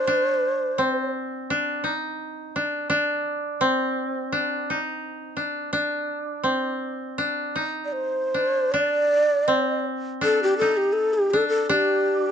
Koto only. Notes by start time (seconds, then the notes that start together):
Already playing: C4
0.07 D4
0.78 C4
1.50 D4
1.84 D#4
2.56 D4
2.90 D4
3.61 C4
4.32 D4
4.70 D#4
5.37 D4
5.73 D4
6.43 C4
7.18 D4
7.56 D#4
8.34 D4
8.74 D4
9.48 C4
10.21 D4
10.61 D#4
11.33 D4
11.69 D4